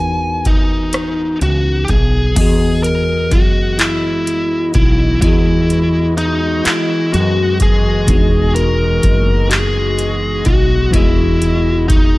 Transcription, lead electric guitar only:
Already playing: G#5
0.47 D#4
1.43 F#4
1.85 G4
1.90 G#4
2.37 G#4
2.83 A#4
3.33 F#4
3.79 E4
4.75 E4
5.21 E4
6.18 D#4
6.66 E4
7.13 F#4
7.62 G#4
8.55 A#4
9.51 G#4
10.46 F#4
10.93 E4
11.88 D#4

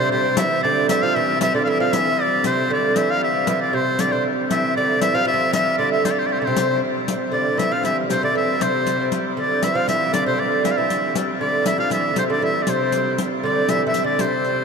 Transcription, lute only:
0.00 C3
0.12 C3
0.39 E3
0.65 D3
0.90 E3
1.03 F3
1.16 E3
1.41 E3
1.54 D3
1.67 E3
1.80 F3
1.93 E3
2.45 C3
2.70 D3
2.96 E3
3.48 E3
3.73 C3
4.00 D3
4.13 C3
4.51 E3
4.77 D3
5.02 E3
5.15 F3
5.25 F3
5.34 F3
5.53 E3
5.79 D3
6.42 D3
6.47 C3
7.32 D3
7.57 E3
7.72 F3
7.84 E3
8.10 C3
8.23 D3
8.35 E3
8.60 C3
9.37 D3
9.63 E3
9.75 F3
9.88 E3
10.13 D3
10.26 C3
10.38 D3
10.64 E3
10.78 E3
11.41 D3
11.63 E3 F3
11.78 F3
11.90 E3
12.16 C3
12.30 D3
12.42 E3
12.67 C3
13.43 D3
13.69 E3
13.87 E3
14.04 D3
14.20 C3

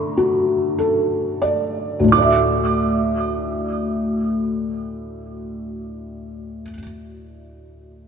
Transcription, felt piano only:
Already playing: D3 A3 A4
0.17 F#4
0.78 A4
1.42 D5
2.00 D2
2.04 A2
2.08 A3
2.13 F#4
2.18 D5
2.22 E5

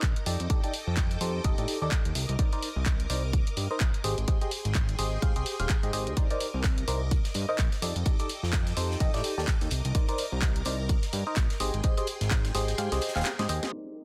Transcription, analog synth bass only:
0.03 A#1
0.26 F2
0.40 F2
0.87 F2
1.21 F2
1.44 F1
1.58 A2
1.82 D#2
2.05 D#2
2.15 C2
2.29 C2
2.76 C2
3.10 C2
3.57 G2
3.81 A#1
4.04 G#1
4.18 G#1
4.65 G#1
4.99 G#1
5.22 G#2
5.36 C2
5.60 D#1
5.83 G#2
5.93 G#1
6.07 D#2
6.54 C2
6.88 C2
7.35 G2
7.59 A#1
7.82 F2
7.96 F2
8.43 F2
8.77 F2
9.00 F1
9.14 A2
9.38 D#2
9.61 D#2
9.71 C2
9.85 C2
10.32 C2
10.66 C2
11.13 G2
11.37 A#1
11.60 G#1
11.74 G#1
12.21 G#1
12.55 G#1
12.78 G#2
12.92 C2
13.15 D#1
13.39 G#2
13.49 D#2

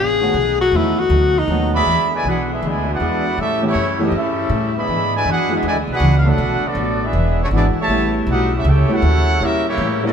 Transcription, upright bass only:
Already playing: A1
0.34 B1
0.72 E2
1.10 D2
1.48 D#2
1.86 E2
2.24 B1
2.62 D2
3.00 E2
3.38 A2
3.75 F#2
4.12 G2
4.49 A2
4.88 G#2
5.25 F#2
5.63 E2
5.74 D2
5.87 B1
6.00 C#2
6.38 B1
6.62 muted upright bass stroke
6.75 A1
7.13 E1
7.51 G#1
7.76 muted upright bass stroke
7.87 A1
8.27 B1
8.64 C#2
8.89 muted upright bass stroke
9.02 D#2
9.40 A#2
9.78 A2

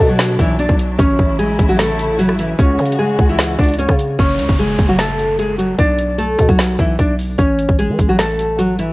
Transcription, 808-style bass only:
0.00 B2
0.39 B1
0.69 B1
0.99 A1
1.19 A1
1.59 A1
2.59 C#2
2.79 C#3
3.19 C#2
3.59 C#2
3.89 C#3
4.19 F#1
4.39 C#2
4.49 F#1
4.79 F#1
5.79 B1
6.39 B2
6.49 B1
6.79 B1
6.99 B1
7.39 A1
7.69 A1
7.89 E3
7.99 A1

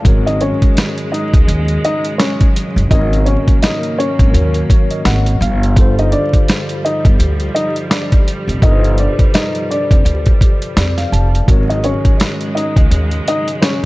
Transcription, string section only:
0.05 C#3 F#3 G#3
2.92 A#3
5.41 F3 G3
11.47 C#3 F#3 G#3

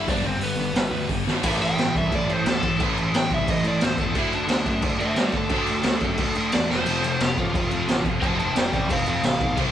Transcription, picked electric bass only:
0.08 G1
0.24 G1
0.39 G1
0.57 G1
0.73 G1
0.90 D2
1.10 G1
1.25 G#1
1.44 A1
1.78 A1
1.96 C2
2.12 A1
2.29 A2
2.46 D2
2.62 A2
2.80 A1
3.13 A1
3.31 C2
3.48 A1
3.64 A2
3.82 D2
3.97 E2
4.15 D2
4.48 D2
4.65 F#2
4.83 D2
4.99 D3
5.16 G2
5.33 D3
5.50 D2
5.85 D2
6.01 F#2
6.18 D2
6.37 D3
6.55 E2
6.71 F1
6.86 F1
7.21 F1
7.38 A1
7.54 F1
7.71 F2
7.88 A1
8.04 F2
8.21 F1
8.57 F1
8.72 A1
8.89 F1
9.07 F2
9.23 A1
9.40 B1
9.57 C2

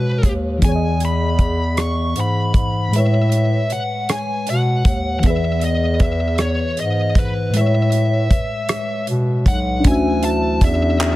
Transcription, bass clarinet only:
Already playing: B2
0.24 D#2
0.62 E2
2.16 G#2
2.54 G#2
2.94 A2
3.72 B2
4.49 B2
4.86 D#2
5.24 E2
6.79 G#2
7.16 G#2
7.55 A2
8.31 B2
9.09 B2
9.46 B1
9.85 D2
10.62 E2

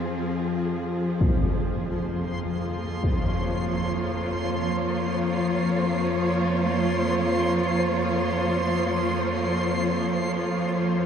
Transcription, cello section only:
Already playing: F3 C4 F4 G#4
1.20 F3
2.14 A#3
2.57 F4
3.18 C5 C#5

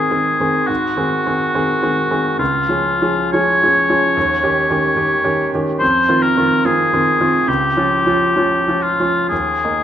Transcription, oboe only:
Already playing: G#4
0.67 F#4
2.39 F4
3.33 C#5
5.79 C5
6.22 A#4
6.65 G#4
7.48 G4
8.83 F4
9.29 G#4

